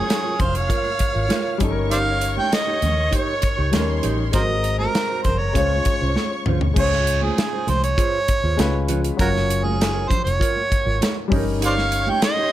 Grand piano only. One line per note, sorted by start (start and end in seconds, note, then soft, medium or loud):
0.00 1.55 F#3 medium
0.00 1.56 C#4 medium
0.00 1.57 F4 medium
0.00 1.58 A#4 medium
1.58 3.68 G3 medium
1.58 3.69 C#4 medium
1.62 3.70 D#4 medium
1.62 1.69 A4 medium
1.71 3.74 A#4 medium
3.71 4.33 G3 medium
3.71 4.33 C#4 medium
3.71 4.34 D#4 medium
3.71 4.35 A#4 medium
4.31 5.51 G#3 medium
4.31 5.52 C4 medium
4.36 5.54 F#4 medium
4.36 5.54 A#4 medium
5.53 6.72 G#3 medium
5.53 6.73 C#4 medium
5.53 6.74 F4 medium
5.58 6.75 C#5 medium
6.74 8.53 G#3 medium
6.74 8.54 C#4 medium
6.78 8.55 F4 medium
6.78 8.56 C#5 medium
8.57 9.18 G#3 medium
8.57 9.18 C#4 medium
8.57 9.19 F4 medium
8.57 9.20 B4 medium
9.17 11.26 F#3 medium
9.17 11.27 C#4 medium
9.21 11.28 F4 medium
9.21 11.29 A#4 medium
11.28 12.52 G3 medium
11.28 12.52 C#4 medium
11.32 12.52 D#4 medium
11.32 12.52 A#4 medium